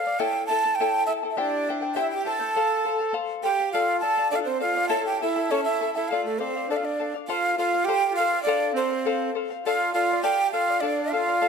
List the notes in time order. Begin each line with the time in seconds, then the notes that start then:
Already playing: F5
0.05 D5 F5
0.20 E4 A4 C#5 E5 G5 A5
0.46 E5 A5
0.50 E4 A4 A5
0.64 E4 A4 A5
0.75 G5
0.80 E4 A4 C#5 E5 A5
1.06 E4 A4 E5 A5
1.23 E4 A4 A5
1.30 E5
1.37 D4 E4 G4 C5 D5 E5 G5
1.68 E4 C5 E5 G5
1.82 E4 C5 G5
1.94 E4 G4 C5 E5 G5
2.10 G4 G5
2.25 E4 A4 C5 E5 G5 A5
2.39 E4 C5 G5
2.56 A4 C5 F5
2.85 A4 C5 F5
3.00 C5 F5
3.13 A4 C5 F5
3.43 G4 A4 C5 F5 G5
3.59 C5 F5
3.72 F4 A4 D5 F5
4.00 A4 D5 F5 A5
4.18 D5 F5
4.31 D4 A4 D5 F5
4.36 D4 F4 F5
4.44 C4 C5
4.60 F4 A4 D5 F5
4.75 D5 F5
4.89 E4 A4 C#5 E5 A5
5.06 G4 G5
5.22 E4 A4 E5 A5
5.36 E4 A4 A5
5.50 C#4 E4 A4 C#5 E5 A5
5.64 E5
5.68 E4
5.81 E4 A4 E5 A5
5.94 E4 A4 E5 A5
6.08 F4 A4 F5
6.12 D5 F5
6.24 A3 A4
6.39 C4 A4 C5 D5 F5
6.56 D5 F5
6.68 D4 A4 D5 F5
6.76 F4 F5
6.82 D4 D5
6.99 A4 D5 F5
7.14 D5 F5
7.28 F4 A4 C5 F5
7.57 F4 A4 C5 F5
7.73 C5 F5
7.84 G4 A4 G5
7.88 C5 F5
8.11 F4
8.15 A4 F5
8.20 C5 F5
8.33 C5 F5
8.42 D4 D5
8.46 A4 C5 F5
8.73 C4 A4 C5
8.78 F5
8.91 C5 F5
9.06 A4 C5 F5
9.35 A4 C5 F5
9.50 C5 F5
9.66 F4 A4 D5 F5
9.94 F4 A4 D5 F5
10.11 D5 F5
10.22 G4 A4 D5 F5 G5
10.51 F4 A4 D5 F5
10.68 D5 F5
10.80 D4 A4 D5 F5
11.10 F4 A4 F5
11.14 D5
11.27 D5 F5
11.41 A4 D5 F5